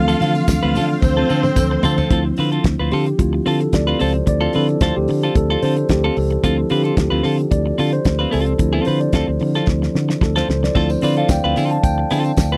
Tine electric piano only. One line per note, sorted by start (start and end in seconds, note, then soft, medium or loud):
0.00 2.13 E3 medium
0.00 1.54 F3 medium
0.00 1.52 A3 medium
0.00 1.53 C4 medium
0.00 1.53 D4 medium
0.00 1.53 A4 medium
1.55 2.08 F3 medium
1.55 2.10 A3 soft
1.55 2.09 C4 soft
1.55 2.10 D4 soft
1.55 2.11 A4 medium
2.10 2.87 F3 soft
2.10 2.87 C4 soft
2.10 2.88 E4 medium
2.92 3.20 G4 medium
3.18 3.43 F3 soft
3.18 3.43 C4 soft
3.18 3.43 E4 medium
3.18 3.47 F4 medium
3.47 3.74 A4 medium
3.74 3.86 D5 medium
4.01 4.29 C5 medium
4.29 4.56 D5 loud
4.54 4.90 F3 medium
4.54 4.91 C4 medium
4.54 4.91 E4 medium
4.54 4.83 A4 medium
4.82 4.95 C5 medium
4.96 5.37 G4 medium
5.37 5.64 A4 medium
5.63 5.90 C5 loud
5.90 6.17 G4 medium
6.17 6.43 A4 medium
6.43 6.80 F3 medium
6.43 6.80 C4 soft
6.43 6.80 E4 medium
6.43 6.71 A4 medium
6.71 6.98 G4 medium
6.97 7.23 F4 medium
7.51 7.94 D5 loud
7.93 8.34 C5 medium
8.32 8.88 A4 medium
8.58 9.38 F3 medium
8.58 9.39 C4 medium
8.58 9.39 E4 medium
8.86 9.01 C5 loud
9.01 9.51 D5 medium
9.40 9.64 F3 soft
9.40 9.65 C4 soft
9.40 9.65 E4 medium
10.23 10.37 A4 medium
10.37 10.64 C5 medium
10.64 10.89 D5 medium
10.75 11.12 F3 medium
10.75 11.12 C4 soft
10.75 11.13 E4 medium
10.91 11.03 C5 medium
11.04 11.18 D5 loud
11.18 11.30 F5 medium
11.31 11.45 G5 medium
11.45 11.72 F5 medium
11.71 11.83 A5 medium
11.84 12.57 G5 loud